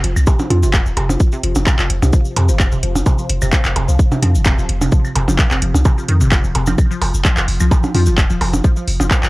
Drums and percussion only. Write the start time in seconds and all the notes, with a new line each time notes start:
0.04 closed hi-hat
0.16 cabasa, claves
0.27 kick, cabasa, percussion blips
0.39 percussion blips, cabasa
0.50 closed hi-hat, percussion blips
0.63 cabasa
0.74 kick, clap, cabasa
0.86 cabasa
0.97 closed hi-hat, claves, percussion blips
1.09 percussion blips, cabasa
1.20 kick, cabasa
1.32 cabasa
1.43 closed hi-hat
1.55 percussion blips, cabasa
1.67 kick, clap, cabasa, percussion blips
1.79 clap, cabasa, claves
1.90 closed hi-hat
2.02 percussion blips, cabasa
2.13 kick, cabasa
2.25 cabasa
2.36 closed hi-hat, percussion blips
2.49 cabasa
2.60 kick, clap, cabasa, claves
2.72 cabasa
2.83 closed hi-hat
2.95 percussion blips, cabasa
3.06 kick, cabasa, percussion blips
3.18 cabasa
3.29 closed hi-hat
3.42 cabasa, claves
3.52 kick, clap, cabasa
3.64 clap, cabasa
3.76 closed hi-hat, percussion blips
3.88 cabasa
3.99 kick, cabasa
4.12 percussion blips, cabasa
4.22 closed hi-hat, percussion blips, claves
4.35 cabasa
4.45 kick, clap, cabasa, percussion blips
4.59 cabasa
4.69 closed hi-hat
4.81 percussion blips, cabasa
4.92 kick, cabasa
5.05 cabasa, claves
5.16 closed hi-hat, percussion blips
5.28 percussion blips, cabasa
5.39 kick, clap, cabasa
5.51 clap, cabasa
5.62 closed hi-hat
5.74 percussion blips, cabasa
5.85 kick, cabasa, claves, percussion blips
5.98 cabasa
6.09 closed hi-hat
6.21 cabasa
6.32 kick, clap, cabasa
6.44 cabasa
6.55 closed hi-hat, percussion blips
6.66 percussion blips, cabasa, claves
6.78 kick, cabasa, claves
6.91 cabasa
7.02 open hi-hat, percussion blips
7.14 cabasa
7.25 kick, clap, cabasa
7.37 clap, cabasa
7.48 open hi-hat
7.60 cabasa, claves
7.71 kick, cabasa, percussion blips
7.84 percussion blips, cabasa
7.95 open hi-hat, percussion blips
8.06 cabasa
8.18 kick, clap, cabasa
8.30 cabasa
8.41 open hi-hat, claves, percussion blips
8.53 percussion blips, cabasa
8.64 kick, cabasa
8.76 cabasa
8.88 open hi-hat
9.00 percussion blips, cabasa
9.11 kick, clap, cabasa, percussion blips
9.23 clap, cabasa, claves